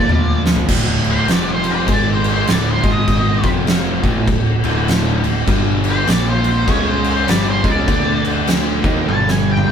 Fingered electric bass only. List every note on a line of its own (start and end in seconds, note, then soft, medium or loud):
0.09 0.62 D2 loud
0.69 1.25 D1 medium
1.29 1.85 F1 medium
1.88 2.44 G#1 loud
2.48 2.82 D1 loud
2.84 3.40 G#1 loud
3.44 4.00 F1 loud
4.04 4.26 A1 medium
4.28 4.61 D1 medium
4.64 5.20 D1 medium
5.24 5.46 D1 medium
5.48 6.04 G1 medium
6.08 6.64 A#1 loud
6.68 7.24 C#2 medium
7.28 7.62 G1 loud
7.64 7.87 C#2 loud
7.88 8.80 D2 medium
8.84 9.07 D#2 medium
9.08 9.64 G1 medium
9.68 9.72 G#1 loud